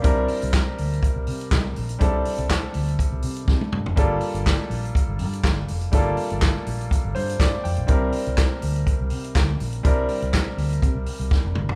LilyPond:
<<
  \new Staff \with { instrumentName = "Grand piano" } { \time 4/4 \key c \mixolydian \tempo 4 = 122 << { d''8 r2. r8 | r1 | r1 | r2 r8 c''8 d''8 g''8 |
r1 | r1 | } \\ { <g c' d' e' bes'>1 | <g c' d' e' a'>1 | <g bes d' f' a'>1 | <g a bes d' f' a'>1 |
<g c' d' e' bes'>1 | <g c' d' e' bes'>1 | } >> }
  \new Staff \with { instrumentName = "Fingered electric bass" } { \clef bass \time 4/4 \key c \mixolydian c,8 r16 c,8 r16 d,8 r16 c,16 c8 c,8 bes,,8 | c,8 r16 c,8 r16 d,8 r16 c,16 c8 c16 r16 g,16 f,,16 | g,,8 r16 g,,8 r16 bes,,8 r16 g,,16 g,8 g,,8 f,,8 | g,,8 r16 g,,8 r16 bes,,8 r16 g,,16 g,8 g,16 r16 f,16 bes,,16 |
c,8 r16 c,8 r16 d,8 r16 c,16 c8 d,8 bes,,8 | c,8 r16 c,8 r16 d,8 c16 c,16 r16 c,16 r16 f,,16 g,,16 f,,16 | }
  \new DrumStaff \with { instrumentName = "Drums" } \drummode { \time 4/4 <hh bd>8 hho16 hh16 <hc hh bd sn>8 hho16 hh16 <hh bd>8 hho16 hh16 <hc hh bd sn>8 hho16 hh16 | <hh bd>8 hho16 hh16 <hc hh bd sn>8 hho16 hh16 <hh bd>8 hho16 hh16 <bd sn>16 tommh16 toml16 tomfh16 | <hh bd>8 hho16 hh16 <hc hh bd sn>8 hho16 hh16 <hh bd>8 hho16 hh16 <hc hh bd sn>8 hho16 hh16 | <hh bd>8 hho16 hh16 <hc hh bd sn>8 hho16 hh16 <hh bd>8 hho16 hh16 <hc hh bd sn>8 hho16 hh16 |
<hh bd>8 hho16 hh16 <hc hh bd sn>8 hho16 hh16 <hh bd>8 hho16 hh16 <hc hh bd sn>8 hho16 hh16 | <hh bd>8 hho16 hh16 <hc hh bd sn>8 hho16 hh16 <hh bd>8 hho16 hh16 <bd sn>8 toml16 tomfh16 | }
>>